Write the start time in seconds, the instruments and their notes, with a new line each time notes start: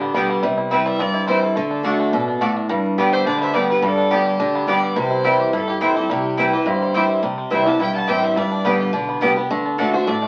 Already playing: upright bass A1, steel-string acoustic guitar D3, five-string banjo D4 G4, fiddle G4
0.01 five-string banjo B3
0.14 upright bass B1, steel-string acoustic guitar D3 G3 B3 G4, five-string banjo G3, mandolin B3 G4 D5 G5
0.30 five-string banjo B3
0.42 upright bass C2, steel-string acoustic guitar C3, five-string banjo G3
0.58 five-string banjo E4
0.70 steel-string acoustic guitar E3 G3 C4 E4, mandolin C4 E4 C5 G5, five-string banjo C4, fiddle B4
0.86 five-string banjo G3, fiddle E5
0.99 upright bass G1, steel-string acoustic guitar G2, five-string banjo C4, fiddle D5
1.14 five-string banjo E4
1.27 five-string banjo E3, steel-string acoustic guitar E3 G3 C4 E4, mandolin C4 E4 C5 G5, fiddle C5
1.42 five-string banjo E4, fiddle A4
1.56 upright bass D2, steel-string acoustic guitar D3, five-string banjo A3
1.71 five-string banjo D4
1.83 steel-string acoustic guitar D3 A3 D4 F#4, mandolin A3 F#4 D5 F#5, five-string banjo A3
1.99 five-string banjo D4
2.12 upright bass A1, steel-string acoustic guitar B2, five-string banjo D4
2.28 five-string banjo D4
2.41 steel-string acoustic guitar A2, mandolin A3 F#4 D5 F#5, five-string banjo A3
2.56 five-string banjo D4
2.69 upright bass G1, steel-string acoustic guitar G2, five-string banjo G3
2.98 steel-string acoustic guitar D3 G3 B3 G4, five-string banjo G3, mandolin B3 G4 D5 G5, resonator guitar played with a steel bar G4, fiddle B4
3.13 five-string banjo G4, resonator guitar played with a steel bar C5, fiddle E5
3.26 upright bass D2, steel-string acoustic guitar D3, five-string banjo D4, resonator guitar played with a steel bar B4, fiddle D5
3.40 five-string banjo B3, resonator guitar played with a steel bar C5, fiddle E5
3.54 steel-string acoustic guitar D3 G3 B3 G4, five-string banjo G3, mandolin B3 G4 D5 G5, resonator guitar played with a steel bar B4, fiddle D5
3.70 five-string banjo B3, resonator guitar played with a steel bar G4, fiddle B4
3.82 upright bass G1, steel-string acoustic guitar G2, five-string banjo G3, resonator guitar played with a steel bar D4, fiddle A4
3.98 five-string banjo D4
4.11 steel-string acoustic guitar D3 G3 B3 G4, five-string banjo G3, mandolin B3 G4 D5 G5, resonator guitar played with a steel bar D4, fiddle G4
4.26 five-string banjo G4
4.39 upright bass D2, steel-string acoustic guitar D3, five-string banjo D4
4.55 five-string banjo B3
4.67 steel-string acoustic guitar D3 G3 B3 G4, five-string banjo G3, mandolin B3 G4 D5 G5, resonator guitar played with a steel bar B4, fiddle D5
4.83 five-string banjo B3
4.96 upright bass C2, steel-string acoustic guitar C3, five-string banjo E3, resonator guitar played with a steel bar G4, fiddle C5
5.11 five-string banjo E4
5.24 steel-string acoustic guitar E3 G3 C4 E4, five-string banjo G3, mandolin C4 E4 C5 G5
5.39 five-string banjo G4
5.53 upright bass G1, steel-string acoustic guitar G2, five-string banjo E4, resonator guitar played with a steel bar E4, fiddle A4
5.68 resonator guitar played with a steel bar E4, five-string banjo G4, fiddle G4
5.81 steel-string acoustic guitar E3 G3 C4 E4, mandolin C4 E4 C5 G5, five-string banjo C4, resonator guitar played with a steel bar E4, fiddle A4
5.96 steel-string acoustic guitar C4 E4, five-string banjo G4
6.09 upright bass C2, steel-string acoustic guitar C3, five-string banjo G3, resonator guitar played with a steel bar E4, fiddle G4
6.37 steel-string acoustic guitar E3 G3 C4 E4, mandolin C4 E4 C5 G5, five-string banjo E4, resonator guitar played with a steel bar G4, fiddle B4
6.53 steel-string acoustic guitar C4 E4, five-string banjo G4
6.66 upright bass G1, steel-string acoustic guitar G2, five-string banjo E4, resonator guitar played with a steel bar G4, fiddle C5
6.82 five-string banjo G3
6.94 steel-string acoustic guitar E3 G3 C4 E4, mandolin C4 E4 C5 G5, five-string banjo G4
7.10 five-string banjo C4
7.23 upright bass C2, steel-string acoustic guitar C3, five-string banjo G3
7.38 five-string banjo C4
7.50 upright bass C2, steel-string acoustic guitar E3 G3 C4 E4, mandolin C4 E4 C5 G5, five-string banjo E4, resonator guitar played with a steel bar C5, fiddle E5
7.66 steel-string acoustic guitar C4 E4, five-string banjo G4, resonator guitar played with a steel bar F#5, fiddle A5
7.79 upright bass B1, steel-string acoustic guitar G2, five-string banjo E4, resonator guitar played with a steel bar E5, fiddle G5
7.95 five-string banjo G3, resonator guitar played with a steel bar F#5, fiddle A5
8.07 upright bass A1, steel-string acoustic guitar E3 G3 C4 E4, mandolin C4 E4 C5 G5, five-string banjo G4, resonator guitar played with a steel bar E5, fiddle G5
8.23 five-string banjo C4, resonator guitar played with a steel bar C5, fiddle E5
8.36 upright bass G1, steel-string acoustic guitar G2, five-string banjo G3, resonator guitar played with a steel bar B4, fiddle D5
8.52 five-string banjo D4
8.64 upright bass A1, steel-string acoustic guitar D3 G3 B3 G4, five-string banjo G3, mandolin B3 G4 D5 G5, resonator guitar played with a steel bar G4, fiddle B4
8.80 five-string banjo G4
8.93 upright bass B1, steel-string acoustic guitar D3, five-string banjo D4
9.09 five-string banjo B3
9.21 upright bass C2, steel-string acoustic guitar D3 G3 B3 G4, five-string banjo G3, mandolin B3 G4 D5 G5
9.36 five-string banjo B3, steel-string acoustic guitar B3 G4
9.50 upright bass D2, steel-string acoustic guitar D3, five-string banjo A3
9.66 five-string banjo D4
9.78 steel-string acoustic guitar D3 A3 D4 F#4, mandolin A3 F#4 D5 F#5, five-string banjo D4, resonator guitar played with a steel bar F#4, fiddle A4
9.93 five-string banjo D4, steel-string acoustic guitar D4 F#4, resonator guitar played with a steel bar C5, fiddle E5
10.07 upright bass A1, steel-string acoustic guitar A2, five-string banjo D4, resonator guitar played with a steel bar A4, fiddle D5
10.22 five-string banjo A3